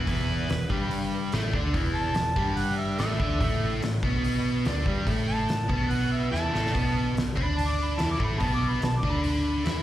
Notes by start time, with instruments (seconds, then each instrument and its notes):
Already playing: harmonica B4
0.07 picked electric bass E1, overdriven electric guitar E2 E3, kick, open hi-hat
0.49 picked electric bass E1, overdriven electric guitar E2, snare, open hi-hat
0.69 picked electric bass G1, overdriven electric guitar G2 G3, kick
0.91 open hi-hat
1.32 picked electric bass A1, overdriven electric guitar A2 A3, snare, open hi-hat
1.53 picked electric bass D2, overdriven electric guitar D3 D4, kick
1.72 picked electric bass E1, overdriven electric guitar E2 E3, kick, open hi-hat
1.94 harmonica A5
2.15 picked electric bass E1, overdriven electric guitar E2, snare, open hi-hat
2.36 picked electric bass G1, overdriven electric guitar G2 G3, kick
2.57 harmonica F#5, open hi-hat
2.78 harmonica E5
2.98 picked electric bass A1, overdriven electric guitar A2 A3, harmonica E5, snare, open hi-hat
3.20 picked electric bass D2, overdriven electric guitar D3 D4, kick
3.40 picked electric bass A1, overdriven electric guitar A2 A3, kick, open hi-hat
3.82 picked electric bass A1, overdriven electric guitar A2, snare, open hi-hat
4.03 picked electric bass B1, overdriven electric guitar B2 B3, kick
4.24 open hi-hat
4.65 picked electric bass D2, overdriven electric guitar D3 D4, snare, open hi-hat
4.85 picked electric bass G1, overdriven electric guitar G2 G3, kick
5.05 picked electric bass A1, overdriven electric guitar A2 A3, kick, open hi-hat
5.28 harmonica A5
5.49 picked electric bass A1, overdriven electric guitar A2, snare, open hi-hat
5.68 picked electric bass B1, overdriven electric guitar B2 B3, kick
5.91 harmonica F#5, open hi-hat
6.11 harmonica E5
6.31 picked electric bass E2, overdriven electric guitar E3 E4, harmonica A5, snare
6.53 picked electric bass A1, overdriven electric guitar A2 A3, snare
6.66 snare
6.73 picked electric bass B1, overdriven electric guitar B2 B3, kick, open hi-hat
7.15 picked electric bass B1, overdriven electric guitar B2, snare, open hi-hat
7.36 picked electric bass D2, overdriven electric guitar D3 D4, kick
7.43 harmonica B5
7.57 harmonica A5, open hi-hat
7.68 harmonica D6
7.84 harmonica B5
7.98 picked electric bass E2, overdriven electric guitar E3 E4, harmonica A5, snare, open hi-hat
8.11 harmonica D6
8.18 picked electric bass A1, overdriven electric guitar A2 A3, kick
8.24 harmonica B5
8.38 picked electric bass B1, overdriven electric guitar B2 B3, harmonica A5, kick, open hi-hat
8.54 harmonica D6
8.69 harmonica B5
8.81 picked electric bass B1, overdriven electric guitar B2, harmonica A5, snare, open hi-hat
8.99 harmonica D6
9.03 picked electric bass D2, overdriven electric guitar D3 D4, kick
9.10 harmonica B5
9.24 open hi-hat
9.64 picked electric bass E2, overdriven electric guitar E3 E4, snare, open hi-hat